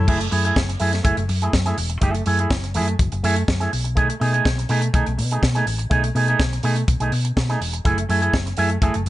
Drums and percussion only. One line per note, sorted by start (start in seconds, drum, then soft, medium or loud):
0.08 kick loud
0.08 crash medium
0.21 closed hi-hat soft
0.32 open hi-hat medium
0.45 closed hi-hat soft
0.56 kick loud
0.56 snare loud
0.69 closed hi-hat soft
0.80 open hi-hat medium
0.93 snare soft
0.93 closed hi-hat soft
1.05 kick loud
1.05 closed hi-hat medium
1.17 closed hi-hat soft
1.29 open hi-hat medium
1.42 closed hi-hat soft
1.53 kick medium
1.53 snare loud
1.66 closed hi-hat soft
1.78 open hi-hat medium
1.90 closed hi-hat soft
2.02 kick loud
2.02 closed hi-hat medium
2.15 closed hi-hat soft
2.26 open hi-hat medium
2.39 closed hi-hat soft
2.51 kick loud
2.51 snare loud
2.64 closed hi-hat soft
2.74 open hi-hat medium
2.88 closed hi-hat soft
2.99 kick loud
2.99 closed hi-hat medium
3.12 closed hi-hat soft
3.24 open hi-hat medium
3.36 closed hi-hat soft
3.48 kick loud
3.48 snare loud
3.61 closed hi-hat soft
3.73 open hi-hat medium
3.85 closed hi-hat soft
3.97 kick loud
3.97 closed hi-hat medium
4.10 closed hi-hat medium
4.21 open hi-hat medium
4.34 closed hi-hat soft
4.45 kick loud
4.45 snare loud
4.59 closed hi-hat soft
4.69 open hi-hat medium
4.82 closed hi-hat soft
4.94 kick loud
4.94 closed hi-hat medium
5.06 closed hi-hat soft
5.19 open hi-hat medium
5.31 closed hi-hat soft
5.43 kick loud
5.43 snare loud
5.55 closed hi-hat soft
5.67 open hi-hat medium
5.79 closed hi-hat soft
5.91 kick loud
5.91 closed hi-hat medium
6.04 closed hi-hat soft
6.16 open hi-hat medium
6.28 closed hi-hat soft
6.40 kick loud
6.40 snare loud
6.53 closed hi-hat soft
6.63 open hi-hat medium
6.76 closed hi-hat soft
6.88 kick loud
6.88 closed hi-hat medium
7.00 closed hi-hat soft
7.12 open hi-hat medium
7.25 closed hi-hat soft
7.37 kick loud
7.37 snare loud
7.50 closed hi-hat soft
7.62 open hi-hat medium
7.74 closed hi-hat soft
7.85 kick loud
7.85 closed hi-hat medium
7.98 closed hi-hat soft
8.10 open hi-hat medium
8.22 closed hi-hat soft
8.34 kick loud
8.34 snare loud
8.47 closed hi-hat soft
8.57 open hi-hat medium
8.70 closed hi-hat soft
8.82 kick loud
8.82 closed hi-hat medium
8.94 closed hi-hat soft